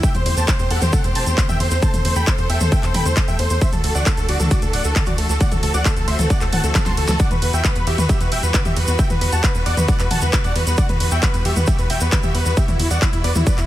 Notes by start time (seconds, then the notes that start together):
0.03 E3 A3 C4 G4 E5 G5, kick, closed hi-hat, shaker
0.14 E2 C5, closed hi-hat, mid tom, shaker
0.26 E2 C5, open hi-hat, ride
0.37 E2 C5 A5, closed hi-hat, shaker
0.48 kick, clap, closed hi-hat, shaker
0.59 E2 C5, closed hi-hat, shaker
0.70 E2 A4 F#5, open hi-hat, ride
0.81 E2 C5, closed hi-hat, mid tom, shaker
0.93 A4 F#5, kick, closed hi-hat, shaker
1.04 E2 C5, closed hi-hat, shaker
1.15 E1 C5 A5, open hi-hat, ride
1.26 E2 C5, closed hi-hat, shaker
1.38 kick, clap, closed hi-hat, mid tom, shaker
1.49 E2 E5 G5, closed hi-hat, mid tom, shaker
1.60 E2 C5, open hi-hat, ride
1.71 E2 C5, closed hi-hat, shaker
1.82 A4 C5 A5, kick, closed hi-hat, shaker
1.94 E2 C5, closed hi-hat, mid tom, shaker
2.05 E2 C5, open hi-hat, ride
2.15 E2 G5 B5, closed hi-hat, shaker
2.27 C5, kick, clap, closed hi-hat, shaker
2.38 E2 C5, closed hi-hat, shaker
2.49 E2 E5 G5, open hi-hat, ride
2.60 E2 C5, closed hi-hat, mid tom, shaker
2.72 E5 G5, kick, closed hi-hat, shaker
2.83 E2 C5, clap, closed hi-hat, shaker
2.94 E1 G5 B5, open hi-hat, mid tom, ride
3.06 E2 C5, closed hi-hat, shaker
3.16 kick, clap, closed hi-hat, shaker
3.28 E2 E5 G5, closed hi-hat, shaker
3.39 E2 C5, open hi-hat, ride
3.50 E2 C5, closed hi-hat, shaker
3.61 A3 D4 F#4 C5 E5, kick, closed hi-hat, shaker
3.73 D2 A4, closed hi-hat, mid tom, shaker
3.84 D2 A4, open hi-hat, ride
3.95 D2 D5 F#5, closed hi-hat, shaker
4.06 A4, kick, clap, closed hi-hat, shaker
4.17 D2 A4, closed hi-hat, shaker
4.29 D2 F#4 D5, open hi-hat, ride
4.40 D2 A4, closed hi-hat, mid tom, shaker
4.51 F#4 D5, kick, closed hi-hat, shaker
4.62 D2 A4, closed hi-hat, shaker
4.73 D1 D5 F#5, open hi-hat, ride
4.84 D2 A4, closed hi-hat, shaker
4.96 A4, kick, clap, closed hi-hat, mid tom, shaker
5.06 D2 F#4 D5, closed hi-hat, mid tom, shaker
5.18 D2 A4, open hi-hat, ride
5.29 D2 A4, closed hi-hat, shaker
5.40 C4 D5 F#5, kick, closed hi-hat, shaker
5.52 D2 A4, closed hi-hat, mid tom, shaker
5.63 D2 A4, open hi-hat, ride
5.74 D2 D5 F#5, closed hi-hat, shaker
5.85 A4, kick, clap, closed hi-hat, shaker
5.96 D2 A4, closed hi-hat, shaker
6.08 D2 C5 E5, open hi-hat, ride
6.19 D2 A4, closed hi-hat, mid tom, shaker
6.30 D5 F#5, kick, closed hi-hat, shaker
6.41 D2 A4, clap, closed hi-hat, shaker
6.52 D1 F#5 A5, open hi-hat, mid tom, ride
6.64 D2 A4, closed hi-hat, shaker
6.75 A4, kick, snare, clap, closed hi-hat, shaker
6.85 D2 A5 C6, snare, closed hi-hat, shaker
6.97 D2 A4, open hi-hat, ride
7.08 D2 A4, snare, closed hi-hat, shaker
7.19 G3 B3 D5 F#5, kick, closed hi-hat, shaker
7.31 E2 B4, closed hi-hat, mid tom, shaker
7.42 E2 B4, open hi-hat, ride
7.53 E2 E5 G5, closed hi-hat, shaker
7.64 B4, kick, clap, closed hi-hat, shaker
7.75 E2 B4, closed hi-hat, shaker
7.87 E2 G4 E5, open hi-hat, ride
7.98 E2 B4, closed hi-hat, mid tom, shaker
8.09 G4 E5, kick, closed hi-hat, shaker
8.20 E2 B4, closed hi-hat, shaker
8.32 E1 E5 G5, open hi-hat, ride
8.43 E2 B4, closed hi-hat, shaker
8.54 B4, kick, clap, closed hi-hat, mid tom, shaker
8.65 E2 G4 E5, closed hi-hat, mid tom, shaker
8.76 E2 B4, open hi-hat, ride
8.87 E2 B4, closed hi-hat, shaker
8.99 E5 G5, kick, closed hi-hat, shaker
9.10 E2 B4, closed hi-hat, mid tom, shaker
9.21 E2 B4, open hi-hat, ride
9.32 E2 F#5 A5, closed hi-hat, shaker
9.43 B4, kick, clap, closed hi-hat, shaker
9.55 E2 B4, closed hi-hat, shaker
9.66 E2 D5 F#5, open hi-hat, ride
9.77 E2 B4, closed hi-hat, mid tom, shaker
9.88 D5 F#5, kick, closed hi-hat, shaker
9.99 E2 B4, clap, closed hi-hat, shaker
10.11 E1 F#5 A5, open hi-hat, mid tom, ride
10.21 E2 B4, shaker
10.33 B4, kick, clap, closed hi-hat, shaker
10.44 E2 D5 F#5, closed hi-hat, shaker
10.56 E2 B4, open hi-hat, ride
10.67 E2 B4, closed hi-hat, shaker
10.77 D5 F#5, kick, closed hi-hat, shaker
10.89 E2 B4, closed hi-hat, mid tom, shaker
11.00 E2 B4, open hi-hat, ride
11.11 E2 E5 G5, closed hi-hat, shaker
11.22 B4, kick, clap, closed hi-hat, shaker
11.34 E2 B4, closed hi-hat, shaker
11.45 E2 G4 E5, open hi-hat, ride
11.56 E2 B4, closed hi-hat, mid tom, shaker
11.66 G4 E5, kick, closed hi-hat, shaker
11.79 E2 B4, closed hi-hat, shaker
11.90 E1 E5 G5, open hi-hat, ride
12.00 E2 B4, closed hi-hat, shaker
12.12 B4, kick, clap, closed hi-hat, mid tom, shaker
12.23 E2 G4 E5, closed hi-hat, mid tom, shaker
12.35 E2 B4, open hi-hat, ride
12.46 E2 B4, closed hi-hat, shaker
12.57 G4 E5, kick, closed hi-hat, shaker
12.68 E2 E4, closed hi-hat, mid tom, shaker
12.79 E2 E4, open hi-hat, ride
12.91 E2 D5 F#5, closed hi-hat, shaker
13.02 E4, kick, clap, closed hi-hat, shaker
13.13 E2 E4, closed hi-hat, shaker
13.24 E2 B4 D5, open hi-hat, ride
13.35 E2 E4, closed hi-hat, mid tom, shaker
13.47 B4 D5, kick, closed hi-hat, shaker
13.58 E2 E4, clap, closed hi-hat, shaker